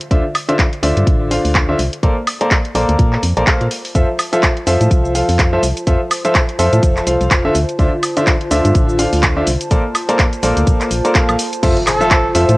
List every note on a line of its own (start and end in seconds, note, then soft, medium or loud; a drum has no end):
0.01 closed hi-hat medium
0.11 0.21 D2 loud
0.11 0.22 D3 medium
0.11 0.22 F4 medium
0.11 0.22 C5 medium
0.11 0.22 D5 medium
0.11 0.22 E5 loud
0.11 kick loud
0.11 closed hi-hat medium
0.35 open hi-hat loud
0.35 high woodblock medium
0.49 0.63 D3 loud
0.49 0.63 F4 medium
0.49 0.63 C5 medium
0.49 0.63 D5 medium
0.49 0.63 E5 loud
0.49 closed hi-hat medium
0.59 kick loud
0.59 clap loud
0.59 closed hi-hat medium
0.73 closed hi-hat soft
0.83 0.93 D2 medium
0.83 1.28 D3 medium
0.83 1.28 F4 medium
0.83 1.28 C5 medium
0.83 1.28 D5 medium
0.83 1.28 E5 loud
0.83 open hi-hat loud
0.97 1.04 G2 loud
0.97 closed hi-hat medium
1.07 1.39 A1 medium
1.07 kick loud
1.07 closed hi-hat medium
1.31 1.65 D3 medium
1.31 1.66 F4 medium
1.31 1.65 C5 medium
1.31 1.65 D5 medium
1.31 1.66 F5 medium
1.31 open hi-hat loud
1.45 1.74 D2 medium
1.45 open hi-hat medium
1.55 kick loud
1.55 clap loud
1.55 closed hi-hat medium
1.69 1.77 D3 medium
1.69 1.77 F4 medium
1.69 1.77 C5 medium
1.69 1.77 D5 medium
1.69 1.77 E5 loud
1.79 1.89 C2 medium
1.79 open hi-hat loud
1.93 closed hi-hat medium
2.03 2.13 A#1 loud
2.03 2.14 A#3 loud
2.03 2.14 A4 medium
2.03 2.14 A#4 medium
2.03 2.14 C5 medium
2.03 12.57 C5 medium
2.03 2.14 D5 loud
2.03 kick loud
2.03 closed hi-hat medium
2.27 open hi-hat loud
2.27 high woodblock medium
2.41 2.55 A#3 loud
2.41 2.55 A4 medium
2.41 2.55 A#4 medium
2.41 2.55 C5 medium
2.41 2.55 D5 loud
2.41 closed hi-hat medium
2.51 kick loud
2.51 clap loud
2.51 closed hi-hat medium
2.65 12.57 F4 medium
2.65 closed hi-hat soft
2.75 2.85 A#1 medium
2.75 3.21 A#3 medium
2.75 3.21 A4 medium
2.75 3.21 A#4 medium
2.75 3.21 C5 medium
2.75 3.21 D5 loud
2.75 open hi-hat loud
2.89 2.96 D2 loud
2.89 12.57 A5 medium
2.89 closed hi-hat soft
2.99 3.17 A#2 loud
2.99 kick loud
2.99 closed hi-hat medium
3.13 clap soft
3.23 3.33 F2 loud
3.23 open hi-hat loud
3.37 3.44 A#1 medium
3.37 3.45 A#3 medium
3.37 3.45 A4 medium
3.37 3.45 A#4 medium
3.37 3.45 C5 medium
3.37 3.45 D5 loud
3.37 closed hi-hat medium
3.47 3.64 A#3 medium
3.47 3.64 A4 medium
3.47 3.64 A#4 medium
3.47 3.64 C5 medium
3.47 3.64 F5 medium
3.47 kick loud
3.47 clap loud
3.47 closed hi-hat medium
3.61 3.68 A#2 medium
3.61 closed hi-hat soft
3.71 open hi-hat loud
3.85 open hi-hat medium
3.95 4.05 F2 loud
3.95 4.06 F3 medium
3.95 4.06 F4 medium
3.95 4.06 A4 medium
3.95 4.06 C5 medium
3.95 4.06 E5 loud
3.95 kick loud
3.95 closed hi-hat medium
3.95 shaker soft
4.19 open hi-hat loud
4.19 high woodblock medium
4.19 shaker medium
4.33 4.47 F3 loud
4.33 4.47 F4 medium
4.33 4.47 A4 medium
4.33 4.47 C5 medium
4.33 4.47 E5 loud
4.33 closed hi-hat medium
4.33 shaker soft
4.43 kick loud
4.43 clap loud
4.43 closed hi-hat medium
4.43 shaker soft
4.57 closed hi-hat soft
4.67 4.77 F2 medium
4.67 5.12 F3 medium
4.67 5.12 F4 medium
4.67 5.12 A4 medium
4.67 5.12 C5 medium
4.67 5.12 E5 loud
4.67 open hi-hat loud
4.67 shaker medium
4.81 4.88 A2 loud
4.81 closed hi-hat medium
4.81 shaker soft
4.91 5.23 C2 medium
4.91 kick loud
4.91 closed hi-hat medium
4.91 shaker soft
5.05 shaker soft
5.15 5.50 F3 medium
5.15 5.49 F4 medium
5.15 5.49 A4 medium
5.15 5.49 C5 medium
5.15 5.49 F5 medium
5.15 open hi-hat loud
5.15 shaker medium
5.29 5.58 F2 medium
5.29 open hi-hat medium
5.29 shaker soft
5.39 kick loud
5.39 clap loud
5.39 closed hi-hat medium
5.39 shaker soft
5.53 5.61 F3 loud
5.53 5.61 F4 medium
5.53 5.61 A4 medium
5.53 5.61 C5 medium
5.53 5.61 E5 loud
5.63 5.73 C2 medium
5.63 open hi-hat loud
5.63 shaker medium
5.77 closed hi-hat medium
5.77 shaker soft
5.87 5.97 F2 loud
5.87 5.98 F3 medium
5.87 5.98 F4 medium
5.87 5.98 A4 medium
5.87 5.98 C5 medium
5.87 5.98 E5 loud
5.87 kick loud
5.87 closed hi-hat medium
5.87 shaker soft
6.11 open hi-hat loud
6.11 high woodblock medium
6.11 shaker medium
6.25 6.39 F3 loud
6.25 6.39 F4 medium
6.25 6.39 A4 medium
6.25 6.39 C5 medium
6.25 6.39 E5 loud
6.25 closed hi-hat medium
6.25 shaker soft
6.35 kick loud
6.35 clap loud
6.35 closed hi-hat medium
6.35 shaker soft
6.49 closed hi-hat soft
6.59 6.69 F2 medium
6.59 7.04 F3 medium
6.59 7.04 F4 medium
6.59 7.04 A4 medium
6.59 7.04 C5 medium
6.59 7.04 E5 loud
6.59 open hi-hat loud
6.59 shaker medium
6.73 6.80 A2 loud
6.73 closed hi-hat medium
6.73 shaker soft
6.83 7.01 F1 loud
6.83 kick loud
6.83 closed hi-hat medium
6.83 shaker soft
6.97 clap soft
6.97 shaker soft
7.07 7.17 C2 medium
7.07 7.41 F3 medium
7.07 7.41 F4 medium
7.07 7.42 A4 medium
7.07 7.41 C5 medium
7.07 7.41 F5 medium
7.07 open hi-hat loud
7.07 shaker medium
7.21 7.28 C2 medium
7.21 closed hi-hat medium
7.21 shaker soft
7.31 7.49 F1 loud
7.31 kick loud
7.31 clap loud
7.31 closed hi-hat medium
7.31 shaker soft
7.45 7.53 D3 medium
7.45 7.53 F4 medium
7.45 7.53 A4 medium
7.45 7.53 C5 medium
7.45 7.53 E5 loud
7.55 7.65 D2 medium
7.55 open hi-hat loud
7.55 shaker medium
7.69 closed hi-hat medium
7.69 shaker soft
7.79 7.89 D2 loud
7.79 7.90 D3 medium
7.79 7.90 F4 medium
7.79 7.90 C5 medium
7.79 7.90 D5 medium
7.79 7.90 E5 loud
7.79 kick loud
7.79 closed hi-hat medium
7.79 shaker soft
8.03 open hi-hat loud
8.03 high woodblock medium
8.03 shaker medium
8.17 8.31 D3 loud
8.17 8.31 F4 medium
8.17 8.31 C5 medium
8.17 8.31 D5 medium
8.17 8.31 E5 loud
8.17 closed hi-hat medium
8.17 shaker soft
8.27 kick loud
8.27 clap loud
8.27 closed hi-hat medium
8.27 shaker soft
8.41 closed hi-hat soft
8.51 8.61 D2 medium
8.51 8.96 D3 medium
8.51 8.97 F4 medium
8.51 8.97 C5 medium
8.51 8.97 D5 medium
8.51 8.97 E5 loud
8.51 open hi-hat loud
8.51 shaker medium
8.65 8.72 G2 loud
8.65 closed hi-hat medium
8.65 shaker soft
8.75 9.07 A1 medium
8.75 kick loud
8.75 closed hi-hat medium
8.75 shaker soft
8.89 shaker soft
8.99 9.33 D3 medium
8.99 9.33 F4 medium
8.99 9.33 C5 medium
8.99 9.33 D5 medium
8.99 9.33 F5 medium
8.99 open hi-hat loud
8.99 shaker medium
9.13 9.42 D2 medium
9.13 open hi-hat medium
9.13 shaker soft
9.23 kick loud
9.23 clap loud
9.23 closed hi-hat medium
9.23 shaker soft
9.37 9.45 D3 loud
9.37 9.45 F4 medium
9.37 9.45 C5 medium
9.37 9.45 D5 medium
9.37 9.45 E5 loud
9.47 9.57 C2 medium
9.47 open hi-hat loud
9.47 shaker medium
9.61 closed hi-hat medium
9.61 shaker soft
9.71 9.81 A#1 loud
9.71 9.82 A#3 loud
9.71 9.82 A4 medium
9.71 9.82 A#4 medium
9.71 9.82 C5 medium
9.71 9.82 D5 loud
9.71 kick loud
9.71 closed hi-hat medium
9.71 shaker soft
9.95 open hi-hat medium
9.95 high woodblock medium
9.95 shaker medium
10.09 10.23 A#3 loud
10.09 10.23 A4 medium
10.09 10.23 A#4 medium
10.09 10.23 C5 medium
10.09 10.23 D5 loud
10.09 closed hi-hat medium
10.09 shaker soft
10.19 kick loud
10.19 clap loud
10.19 closed hi-hat medium
10.19 shaker soft
10.33 closed hi-hat soft
10.33 shaker soft
10.43 10.53 A#1 medium
10.43 10.88 A#3 medium
10.43 10.89 A4 medium
10.43 10.89 A#4 medium
10.43 10.89 C5 medium
10.43 10.89 D5 loud
10.43 open hi-hat loud
10.43 shaker medium
10.57 10.64 D2 loud
10.57 closed hi-hat medium
10.57 shaker soft
10.67 10.77 A#1 medium
10.67 kick loud
10.67 closed hi-hat medium
10.67 shaker soft
10.81 clap soft
10.81 closed hi-hat soft
10.81 shaker soft
10.91 11.01 A#1 medium
10.91 open hi-hat loud
10.91 shaker medium
11.05 11.13 A#3 medium
11.05 11.13 A4 medium
11.05 11.13 A#4 medium
11.05 11.13 C5 medium
11.05 11.13 D5 loud
11.05 closed hi-hat medium
11.05 shaker soft
11.15 11.32 A#3 medium
11.15 11.32 A4 medium
11.15 11.32 A#4 medium
11.15 11.32 C5 medium
11.15 11.32 F5 medium
11.15 kick loud
11.15 clap loud
11.15 closed hi-hat medium
11.15 shaker soft
11.29 11.36 A#1 medium
11.29 high woodblock medium
11.29 shaker soft
11.39 open hi-hat loud
11.39 shaker medium
11.53 closed hi-hat medium
11.53 shaker soft
11.63 11.73 F2 loud
11.63 11.74 F3 medium
11.63 11.74 F4 medium
11.63 11.74 A4 medium
11.63 11.74 C5 medium
11.63 11.74 E5 loud
11.63 kick loud
11.63 closed hi-hat medium
11.63 crash loud
11.63 impact medium
11.63 shaker soft
11.77 closed hi-hat soft
11.87 12.35 A4 loud
11.87 clap medium
11.87 open hi-hat loud
11.87 high woodblock medium
11.87 shaker medium
12.01 12.15 F3 loud
12.01 12.15 F4 medium
12.01 12.15 A4 medium
12.01 12.15 C5 medium
12.01 12.15 E5 loud
12.01 shaker soft
12.11 kick loud
12.11 clap loud
12.11 closed hi-hat medium
12.11 shaker soft
12.35 12.45 F2 medium
12.35 12.57 F3 medium
12.35 12.57 F4 medium
12.35 12.57 A4 medium
12.35 12.57 C5 medium
12.35 12.57 E5 loud
12.35 open hi-hat loud
12.35 shaker medium
12.49 12.56 A2 loud
12.49 closed hi-hat medium
12.49 shaker soft